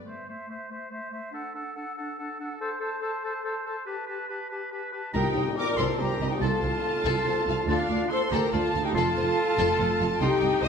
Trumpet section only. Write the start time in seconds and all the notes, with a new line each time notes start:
5.14 D#4
5.57 A#4
5.78 A4
5.99 G4
6.30 D#4
6.41 F4
7.68 D4
8.10 A4
8.31 G4
8.52 F4
8.84 D#4
8.95 F4
10.21 D#4
10.63 C5